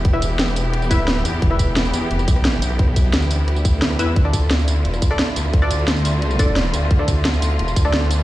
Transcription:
Already playing: E1 E3 B3 E4 G4
0.05 kick, closed hi-hat
0.13 E4 B4 E5, cross-stick
0.22 closed hi-hat, tambourine
0.39 snare, closed hi-hat, tambourine
0.48 tambourine
0.56 open hi-hat, tambourine
0.73 cross-stick, closed hi-hat
0.82 D#1, tambourine
0.91 E4 B4 E5, kick, closed hi-hat, tambourine
1.08 D1, snare, closed hi-hat
1.16 cross-stick
1.25 E2, cross-stick, closed hi-hat, tambourine
1.42 E1, kick, closed hi-hat
1.51 E4 B4 E5, cross-stick
1.59 kick, closed hi-hat, tambourine
1.76 snare, closed hi-hat
1.85 tambourine
1.94 E2, closed hi-hat, tambourine
2.11 F1, closed hi-hat
2.19 cross-stick, tambourine
2.28 B1, kick, closed hi-hat, tambourine
2.36 cross-stick
2.45 snare, closed hi-hat
2.62 B1, closed hi-hat, tambourine
2.71 cross-stick
2.79 kick, closed hi-hat
2.88 cross-stick
2.96 kick, closed hi-hat, tambourine
3.13 D2, snare, closed hi-hat, tambourine
3.22 tambourine
3.31 open hi-hat, tambourine
3.48 cross-stick, closed hi-hat
3.56 tambourine
3.65 kick, closed hi-hat, tambourine
3.82 snare, closed hi-hat
3.91 cross-stick
3.99 E2 E4 B4 E5, cross-stick, closed hi-hat, tambourine
4.16 D2 D3 A3 F4, kick, closed hi-hat
4.25 D4 A4 D5, cross-stick
4.33 kick, closed hi-hat, tambourine
4.51 snare, closed hi-hat
4.59 tambourine
4.68 D2, closed hi-hat, tambourine
4.85 E1, closed hi-hat
4.94 cross-stick, tambourine
5.02 kick, closed hi-hat, tambourine
5.11 D4 A4 D5, cross-stick
5.19 snare, closed hi-hat
5.36 D2, closed hi-hat, tambourine
5.45 cross-stick
5.53 kick, closed hi-hat
5.62 D4 A4 D5, cross-stick
5.71 closed hi-hat, tambourine
5.88 snare, closed hi-hat, tambourine
5.96 tambourine
6.05 open hi-hat, tambourine
6.22 cross-stick, closed hi-hat
6.31 tambourine
6.39 D4 A4 D5, kick, closed hi-hat, tambourine
6.56 snare, closed hi-hat
6.65 cross-stick
6.74 D2, cross-stick, closed hi-hat, tambourine
6.91 D2, kick, closed hi-hat
6.99 D4 A4 D5, cross-stick
7.08 kick, closed hi-hat, tambourine
7.25 snare, closed hi-hat
7.34 tambourine
7.42 D2, closed hi-hat, tambourine
7.59 E1, closed hi-hat
7.68 cross-stick, tambourine
7.76 D2, kick, closed hi-hat, tambourine
7.85 D4 A4 D5, cross-stick
7.94 snare, closed hi-hat
8.11 closed hi-hat, tambourine
8.19 cross-stick

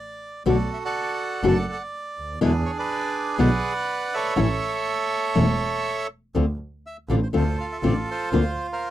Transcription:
Already playing: D5
0.46 B1 B2 D3 A3 B3 F#4 A4 D5
0.73 E5
0.85 A4 D5 F#5
1.43 F#1 B2 D3 A3 B3 F#4
1.48 D5 F#5 A5
1.72 F#5
2.17 D2
2.41 E2 B2 D3 G#3 B3 D4 E4 G#4 B4
2.66 C#5
2.78 G#4 B4 D5
3.38 B1 B2 D3 G#3 B3 E4 B4 D5 F#5
4.14 A4 C#5 E5
4.36 A1 E3 A3 C#4 E4
5.35 E1 E3 A3 C#4 E4
6.35 D2 D3 A3 C4 F4
6.86 E5
7.09 A1 D3 A3 C4 F4 D5
7.23 C5
7.33 D2 D3 A3 C4 F4 A4 C5
7.60 F5
7.72 E5
7.83 A1 D3 A3 C4 F4 D5
8.11 F4 C5
8.32 D2 D3 A#3 C4 F4
8.73 A#4 C5 F5

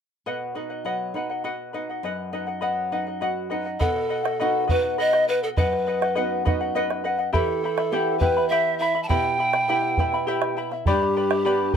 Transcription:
0.26 B2 B4 D#5 F#5
0.55 D#4 B4 D#5 F#5
0.70 D#5 F#5
0.85 F#3 B4 D#5 F#5
1.14 D#4 B4 D#5 F#5
1.30 D#5 F#5
1.44 F#4 B4 D#5 F#5
1.73 D#4 B4 D#5 F#5
1.90 D#5 F#5
2.03 F#2 B4 D#5 F#5
2.33 D#4 B4 D#5 F#5
2.47 D#5 F#5
2.61 F#3 B4 D#5 F#5
2.92 D#4 B4 D#5 F#5
3.07 D#5 F#5
3.21 F#4 B4 D#5 F#5
3.50 D#4 B4 D#5 F#5
3.65 D#5 F#5
3.80 B2 A4 B4 D#5 F#5, bombo low
3.96 bombo rim
4.09 B4 D#5 F#5
4.23 D#5 F#5, bombo rim
4.40 B3 D#4 F#4 B4 D#5 F#5
4.67 B3 D#4 F#4 B4 D#5 F#5, bombo low
4.82 D#5 F#5
4.98 B4 D#5 F#5
5.13 bombo rim
5.28 B4 D#5 F#5
5.43 A4 D#5 F#5
5.57 F#2 B4 D#5 F#5, bombo low
5.73 bombo rim
5.87 B4 D#5 F#5
6.02 D#5 F#5, bombo rim
6.15 B3 D#4 F#4 B4 D#5 F#5
6.45 B3 D#4 F#4 B4 D#5 F#5, bombo low
6.61 D#5 F#5
6.75 B4 D#5 F#5
6.90 bombo rim
7.04 B4 D#5 F#5
7.18 D#5 F#5
7.33 E3 E4 G4 A4 E5 G5 B5, bombo low
7.48 bombo rim
7.64 E4 E5 G5 B5
7.78 E4 E5 B5, bombo rim
7.92 B3 E4 G4 E5 G5 B5
8.19 B3 E4 G4 B4 E5 G5 B5, bombo low
8.37 E4 E5 B5
8.49 E4 G4 E5 G5 B5
8.79 E4 E5 G5 B5
8.95 E4 E5 B5
9.03 A5
9.09 B2 E4 G4 E5 G5 B5, bombo low
9.24 bombo rim
9.39 E4 E5 G5 B5
9.53 E4 E5 B5, bombo rim
9.68 B3 E4 G4 E5 G5 B5
9.82 bombo rim
9.97 B3 E4 G4 E5 G5 B5, bombo low
10.12 E4 E5 B5, bombo rim
10.27 E4 G4 E5 G5 B5
10.42 bombo rim
10.57 E4 E5 G5 B5
10.72 E4 E5 B5, bombo rim
10.86 G2 G4 B4 D5 G5 B5, bombo low
11.02 bombo rim
11.17 B4 D5 G5 B5
11.31 B4 D5 B5, bombo rim
11.45 G3 B3 D4 G4 B4 D5 G5 B5

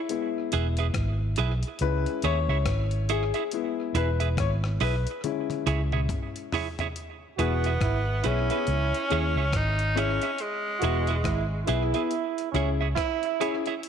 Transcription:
0.09 G#3 B3 E4, closed hi-hat
0.52 E1 E4 G#4 B4 E5, closed hi-hat
0.77 E4 G#4 B4 E5, closed hi-hat
0.94 G#1, kick, cross-stick, closed hi-hat
1.36 B1 E4 G#4 B4 E5, closed hi-hat
1.63 closed hi-hat
1.79 C#2 G#3 C#4 E4 B4, closed hi-hat
2.06 closed hi-hat
2.22 D#2 E4 G#4 C#5 E5, closed hi-hat
2.48 C#2 E4 G#4 C#5 E5
2.66 G#1, kick, cross-stick, closed hi-hat
2.91 closed hi-hat
3.09 E4 G#4 C#5 E5, closed hi-hat
3.34 E4 G#4 C#5 E5, closed hi-hat
3.51 G#3 B3 E4, closed hi-hat
3.94 E1 E4 G#4 B4 E5, closed hi-hat
4.20 E4 G#4 B4 E5, closed hi-hat
4.37 G#1 C#5, kick, cross-stick, closed hi-hat
4.64 cross-stick
4.80 B1 E4 G#4 B4 E5, open hi-hat
5.07 closed hi-hat
5.24 G#3 C#4 E4, closed hi-hat, high tom
5.50 closed hi-hat, high tom
5.67 C#2 E4 G#4 C#5 E5, closed hi-hat
5.92 E4 G#4 C#5 E5, mid tom
6.09 kick, closed hi-hat, mid tom
6.36 closed hi-hat
6.52 E4 G#4 C#5 E5, floor tom, open hi-hat
6.79 E4 G#4 C#5 E5, closed hi-hat, floor tom
6.96 closed hi-hat
7.37 E1 B3 E4 F#4 G#4 B4 E5, closed hi-hat
7.64 E4 G#4 B4 E5, closed hi-hat
7.81 G#1 E4, kick, cross-stick, closed hi-hat
8.23 B1 B3 C#4 E4 G#4 B4 E5, closed hi-hat
8.50 B3 E4 G#4 B4 E5, closed hi-hat
8.67 C#2, closed hi-hat
8.94 closed hi-hat
9.08 D#2 C#4 E4 G#4, closed hi-hat
9.12 G#4 C#5 E5
9.36 C#2 E4 G#4 C#5 E5
9.53 G#1 D#4, kick, cross-stick, closed hi-hat
9.79 closed hi-hat
9.95 C#4 E4 G#4 C#5 E5, closed hi-hat
10.22 E4 G#4 C#5 E5, closed hi-hat
10.38 G#3, closed hi-hat
10.80 E1 B3 E4 F#4 G#4, closed hi-hat
10.84 G#4 B4 E5
11.07 E4 G#4 B4 E5, closed hi-hat
11.23 G#1 E4, kick, cross-stick, closed hi-hat
11.66 B1 B3 E4 G#4 B4 E5, closed hi-hat
11.93 B3 E4 G#4 B4 E5, closed hi-hat
12.11 closed hi-hat
12.38 closed hi-hat
12.52 C#2 C#4 E4 G#4, closed hi-hat
12.56 G#4 C#5 E5
12.81 E4 G#4 C#5 E5
12.95 E4, kick, cross-stick, closed hi-hat
13.23 closed hi-hat
13.40 C#4 E4 G#4 C#5 E5, closed hi-hat
13.66 E4 G#4 C#5 E5, closed hi-hat
13.83 closed hi-hat

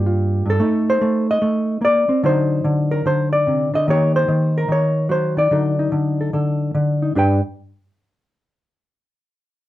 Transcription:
Already playing: G2 A#3 G4
0.06 F4
0.46 G2
0.50 A4
0.60 A3 D#4
0.90 C5
1.01 A3
1.31 D#5
1.42 A3
1.81 A#3 D5
2.09 C4
2.23 D3 F#3 D#4 C5
2.64 D3
2.91 A#4
3.06 D3 C5
3.33 D5
3.47 C3
3.74 D3 D#5
3.88 D#3 A#3 D#4 G4 C#5
4.16 C5
4.28 D#3
4.58 A#4
4.68 D#3 C#5
5.09 F#3 C5
5.37 D#3 D5
5.51 D3 F#3 D#4 A4
5.79 D#4
5.92 D3
6.21 A4
6.33 D3 A4
6.75 D3
7.02 D#4
7.15 G2 D4 G4 B4 G5

